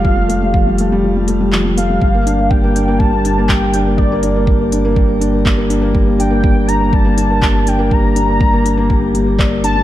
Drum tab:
HH |-x-x-x-x|-x-x-x-x|-x-x-x-x|-x-x-x-x|
CP |------x-|------x-|------x-|------x-|
BD |o-o-----|o-o-o-o-|o-o-o-o-|o-o-o-o-|

HH |-x-x-x-x|
CP |------x-|
BD |o-o-o-o-|